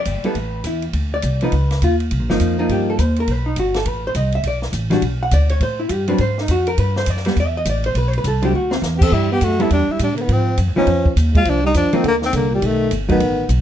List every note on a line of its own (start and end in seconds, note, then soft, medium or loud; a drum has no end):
0.00 0.24 D5 medium
0.05 0.22 G1 medium
0.05 kick soft
0.05 hi-hat pedal soft
0.05 ride medium
0.23 0.35 G3 medium
0.23 0.35 B3 medium
0.23 0.35 E4 medium
0.23 0.35 A4 medium
0.23 0.63 B4 medium
0.23 muted upright bass stroke soft
0.23 ride soft
0.35 0.63 A1 medium
0.35 kick soft
0.35 ride medium
0.64 0.93 E2 medium
0.64 0.84 E4 soft
0.64 kick soft
0.64 hi-hat pedal medium
0.64 ride medium
0.82 ride soft
0.93 1.22 D2 medium
0.93 kick soft
0.93 ride medium
1.14 1.40 D5 medium
1.22 1.52 C2 medium
1.22 kick soft
1.22 hi-hat pedal medium
1.22 ride medium
1.41 1.52 F3 medium
1.41 1.52 B3 medium
1.41 1.52 D#4 medium
1.41 1.80 B4 medium
1.41 ride soft
1.52 1.81 C#2 medium
1.52 kick soft
1.52 ride medium
1.71 snare soft
1.71 ride soft
1.82 2.10 D#2 medium
1.82 1.94 F4 medium
1.82 kick soft
1.82 hi-hat pedal medium
1.82 ride medium
2.00 ride soft
2.11 2.19 C2 medium
2.11 kick soft
2.11 ride medium
2.19 2.29 A#1 medium
2.29 2.39 G1 medium
2.29 2.57 F3 medium
2.29 2.57 A#3 medium
2.29 2.57 D#4 medium
2.29 snare medium
2.40 2.69 F2 medium
2.40 kick soft
2.40 hi-hat pedal soft
2.40 ride medium
2.59 2.96 F3 medium
2.59 2.97 A#3 medium
2.59 2.97 D#4 medium
2.69 2.97 G2 medium
2.69 2.88 G4 medium
2.69 kick soft
2.69 ride medium
2.90 3.01 A4 medium
2.99 3.27 D#2 medium
2.99 3.17 C5 medium
2.99 kick soft
2.99 hi-hat pedal medium
2.99 ride medium
3.16 3.32 A#4 medium
3.16 ride soft
3.27 3.56 B1 medium
3.27 kick soft
3.27 ride medium
3.32 3.47 B4 medium
3.46 3.57 D#4 soft
3.56 3.85 G1 medium
3.56 3.76 F#4 medium
3.56 kick soft
3.56 hi-hat pedal soft
3.56 ride medium
3.74 3.88 A4 medium
3.74 snare medium
3.74 ride soft
3.85 4.14 A1 medium
3.85 4.05 B4 medium
3.85 kick soft
3.85 ride medium
4.07 4.16 C5 medium
4.15 4.43 C2 medium
4.15 4.33 D#5 medium
4.15 kick soft
4.15 hi-hat pedal soft
4.15 ride medium
4.32 4.45 E5 medium
4.32 ride soft
4.43 4.72 B1 medium
4.43 kick soft
4.43 ride medium
4.47 4.57 D5 medium
4.62 snare soft
4.73 5.01 A1 medium
4.73 kick soft
4.73 hi-hat pedal medium
4.73 ride medium
4.90 5.01 E3 medium
4.90 5.01 G3 medium
4.90 5.02 D4 medium
4.90 5.02 F#4 medium
4.90 snare soft
4.90 ride soft
5.02 5.31 B1 medium
5.02 kick soft
5.02 ride medium
5.23 5.32 F#5 medium
5.31 5.60 D2 medium
5.31 5.50 D5 medium
5.31 kick soft
5.31 hi-hat pedal medium
5.31 ride medium
5.49 5.61 C#5 medium
5.49 ride soft
5.60 5.89 A2 medium
5.60 5.80 C5 medium
5.60 kick soft
5.60 ride medium
5.80 5.92 E4 medium
5.89 6.18 G2 medium
5.89 6.08 G4 medium
5.89 kick soft
5.89 hi-hat pedal medium
5.89 ride medium
6.08 6.18 F#3 medium
6.08 6.18 C4 medium
6.08 6.19 D4 medium
6.08 6.20 B4 medium
6.08 ride soft
6.18 6.47 G#2 medium
6.18 6.38 C5 loud
6.18 kick soft
6.18 ride medium
6.38 6.50 D#4 medium
6.38 snare soft
6.48 6.77 F2 medium
6.48 6.68 F#4 medium
6.48 kick soft
6.48 hi-hat pedal medium
6.48 ride medium
6.67 6.78 A#4 medium
6.67 ride soft
6.78 7.06 G2 medium
6.78 6.96 B4 medium
6.78 kick soft
6.78 ride medium
6.96 7.10 C5 medium
6.96 snare medium
7.06 7.35 F#2 medium
7.06 7.26 D5 medium
7.06 kick soft
7.06 hi-hat pedal medium
7.06 ride medium
7.17 snare soft
7.25 7.35 G3 medium
7.25 7.36 B3 medium
7.25 snare soft
7.25 ride soft
7.36 7.65 E2 medium
7.36 7.56 E5 loud
7.36 kick soft
7.36 ride medium
7.57 7.67 D#5 loud
7.65 7.94 A1 loud
7.65 kick soft
7.65 hi-hat pedal medium
7.65 ride medium
7.70 7.85 D5 medium
7.84 7.96 C5 loud
7.84 ride soft
7.95 8.23 B1 medium
7.95 8.08 B4 medium
7.95 kick soft
7.95 ride medium
8.08 8.16 C5 loud
8.13 ride soft
8.18 8.25 B4 medium
8.24 8.52 C2 medium
8.24 8.43 A4 medium
8.24 kick soft
8.24 hi-hat pedal medium
8.24 ride medium
8.42 8.52 D3 medium
8.42 8.52 F#3 medium
8.42 8.52 C4 medium
8.42 8.53 E4 medium
8.42 8.54 G4 medium
8.42 ride soft
8.53 8.81 D2 medium
8.53 8.72 F#4 medium
8.71 8.78 C4 medium
8.71 snare medium
8.82 9.10 E2 loud
8.82 snare medium
8.82 hi-hat pedal medium
8.96 9.02 B3 medium
8.96 9.05 G4 medium
9.00 9.14 C4 medium
9.00 9.15 A4 medium
9.00 kick medium
9.00 crash medium
9.12 9.40 G2 medium
9.12 9.30 G3 medium
9.12 9.31 E4 medium
9.12 kick soft
9.32 9.44 B3 medium
9.32 9.45 G4 medium
9.41 9.69 F#2 medium
9.41 9.62 A3 medium
9.41 9.64 F#4 medium
9.41 kick soft
9.41 hi-hat pedal soft
9.41 ride medium
9.60 9.69 G3 medium
9.60 9.71 G3 medium
9.60 9.70 B3 medium
9.60 9.70 E4 medium
9.60 9.72 E4 medium
9.60 9.70 A4 medium
9.60 ride soft
9.70 9.87 E2 medium
9.70 9.89 G3 medium
9.70 9.93 D4 medium
9.70 kick soft
9.70 ride medium
9.89 9.99 G3 medium
9.89 10.01 E4 medium
9.89 muted upright bass stroke soft
9.99 10.28 A2 medium
9.99 10.11 G3 medium
9.99 kick soft
9.99 hi-hat pedal soft
9.99 ride medium
10.03 10.14 D4 medium
10.12 10.18 C3 medium
10.17 10.30 D3 medium
10.17 10.23 A#3 medium
10.17 ride soft
10.22 10.34 B3 medium
10.28 10.57 G#2 medium
10.28 10.58 F3 medium
10.28 kick soft
10.28 ride medium
10.32 10.60 C4 medium
10.57 10.68 F#2 medium
10.57 kick soft
10.57 hi-hat pedal soft
10.57 ride medium
10.68 10.76 F2 medium
10.76 10.86 D2 medium
10.76 11.13 F3 medium
10.76 10.86 F3 medium
10.76 10.86 B3 medium
10.76 11.14 C#4 medium
10.76 10.87 D#4 medium
10.87 11.15 F2 medium
10.87 kick soft
10.87 ride medium
11.06 kick medium
11.16 11.45 D#2 medium
11.16 kick soft
11.16 hi-hat pedal medium
11.16 ride medium
11.34 11.47 G#3 medium
11.34 11.51 F4 medium
11.34 kick medium
11.34 ride soft
11.45 11.74 C2 medium
11.45 11.63 F3 medium
11.45 kick soft
11.45 ride medium
11.49 11.66 D4 medium
11.63 11.74 G3 medium
11.63 11.75 D#4 medium
11.74 11.92 F2 medium
11.74 11.94 F3 medium
11.74 11.97 D4 medium
11.74 kick soft
11.74 hi-hat pedal medium
11.74 ride medium
11.92 12.02 D#3 medium
11.92 12.03 F3 medium
11.92 12.03 A#3 medium
11.92 12.05 C4 medium
11.92 12.04 D#4 medium
11.92 muted upright bass stroke soft
11.92 ride soft
12.03 12.32 D#2 medium
12.03 12.11 D3 medium
12.03 kick soft
12.03 ride medium
12.08 12.15 A#3 medium
12.21 12.32 D#3 medium
12.21 snare soft
12.25 12.34 C4 medium
12.32 12.61 C2 medium
12.32 12.50 D3 medium
12.32 12.52 A#3 medium
12.32 kick soft
12.32 hi-hat pedal medium
12.32 ride medium
12.51 12.62 A#2 medium
12.51 12.68 G3 medium
12.60 12.90 B1 medium
12.60 12.91 D#3 medium
12.60 kick soft
12.60 ride medium
12.66 12.94 A3 medium
12.91 13.20 G1 medium
12.91 kick soft
12.91 hi-hat pedal soft
12.91 ride medium
13.08 13.46 D#3 medium
13.08 13.19 F#3 medium
13.08 13.20 A3 medium
13.08 13.48 B3 medium
13.08 13.20 D#4 medium
13.08 kick soft
13.08 ride soft
13.20 13.48 A1 medium
13.20 kick soft
13.20 ride medium
13.49 13.61 B1 medium
13.49 kick soft
13.49 hi-hat pedal medium
13.49 ride medium